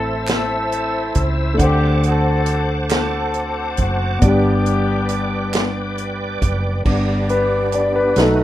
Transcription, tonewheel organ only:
Already playing: C5 E5 A5 E6
1.58 C5 F#5 D6
4.23 B4 D5 G5
6.87 B3 D4 G4 D5
8.17 A3 D#4 F#4 B4

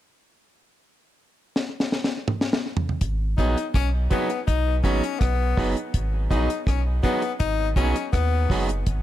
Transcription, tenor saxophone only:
3.37 D#4
3.74 C#4
4.11 B3
4.47 D#4
4.83 C#4
5.20 B3
6.30 D#4
6.67 C#4
7.03 B3
7.40 D#4
7.76 C#4
8.13 B3

